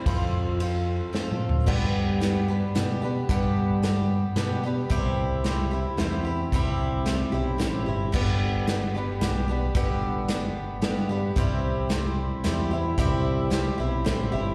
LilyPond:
<<
  \new Staff \with { instrumentName = "Twelve-string acoustic guitar" } { \time 3/4 \key g \mixolydian \tempo 4 = 111 <f c' f' a'>4 <f c' f' a'>4 <f c' f' a'>4 | <g, d g b d' g'>4 <g b d' g'>8 <g b d' g'>8 <g b d' g'>8 <g b d' g'>8 | <g, d g b d' g'>4 <g b d' g'>4 <g b d' g'>8 <g b d' g'>8 | <c g c' e' g'>4 <g c' e' g'>8 <c' e' g'>8 <g c' e' g'>8 <c' e' g'>8 |
<c g c' e' g'>4 <g c' e' g'>8 <c' e' g'>8 <g c' e' g'>8 <c' e' g'>8 | <g, d g b d' g'>4 <g b d' g'>8 <g b d' g'>8 <g b d' g'>8 <g b d' g'>8 | <g, d g b d' g'>4 <g b d' g'>4 <g b d' g'>8 <g b d' g'>8 | <c g c' e' g'>4 <g c' e' g'>4 <g c' e' g'>8 <c' e' g'>8 |
<c g c' e' g'>4 <g c' e' g'>8 <c' e' g'>8 <g c' e' g'>8 <c' e' g'>8 | }
  \new Staff \with { instrumentName = "Picked electric bass" } { \clef bass \time 3/4 \key g \mixolydian f,2 r4 | g,2 b,4 | g,2 b,4 | c,2 e,4 |
c,4. b,,8 a,,8 g,,8 | g,,2 b,,4 | g,,2 g,4 | c,2 e,4 |
c,4. b,,8 a,,8 g,,8 | }
  \new DrumStaff \with { instrumentName = "Drums" } \drummode { \time 3/4 <bd cymr>4 cymr4 \tuplet 3/2 { sn8 toml8 tomfh8 } | <cymc bd>4 <hh sn>4 <hh sn>4 | <hh bd>4 <hh sn>4 <hh sn>4 | <hh bd>4 <hh sn>4 <hh sn>4 |
<hh bd>4 <hh sn>4 <hh sn>4 | <cymc bd>4 <hh sn>4 <hh sn>4 | <hh bd>4 <hh sn>4 <hh sn>4 | <hh bd>4 <hh sn>4 <hh sn>4 |
<hh bd>4 <hh sn>4 <hh sn>4 | }
>>